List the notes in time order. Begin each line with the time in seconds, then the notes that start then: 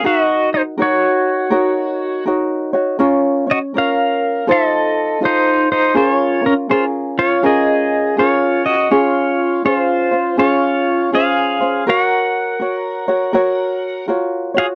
0.04 D#4 F#4 A#4 D#5
0.54 D#4 C5
0.78 D#4 F#4 A#4 C#5
0.82 F#4 C#5
1.50 D#4 F#4 A#4 C#5
2.26 D#4 F#4 A#4 C#5
2.73 D#4 F#4 C#5
2.99 C#4 F4 A#4 C#5
3.47 C#4 C#5
3.51 F#4 D#5
3.74 C#4 F4 A#4 C#5
3.78 F5
4.47 D#4 F4 A4 C5
4.52 D#5
5.21 D#4 F4 A4 C5
5.25 D#4 C5
5.72 D#4 C5
5.94 C#4 F4 G#4 A#4 C5
6.09 C#5
6.42 C#4 F4 A#4
6.46 C#4 A#4
6.69 C#4 F4 G#4 A#4 C5
7.19 F4 C#5
7.43 C#4 F4 G#4 A#4 D#5
8.17 C#4 F4 G#4 A#4 C#5
8.66 F#4 D#5
8.91 C#4 F4 G#4 C#5
9.64 C#4 F4 G#4 C5 C#5
9.77 C5
10.11 C#4 F4 C5
10.37 C#4 F4 G#4 C#5
11.12 C#4 F4 G#4 C5 F5
11.60 C#4 F4 C5
11.87 F#4 A#4 C#5 F#5
12.60 F#4 A#4 C#5
13.08 F#4 C#5
13.33 F#4 A#4 C#5
14.08 F4 F#4 A#4 C#5
14.54 F4 F#4 C#5 F5
14.59 G#4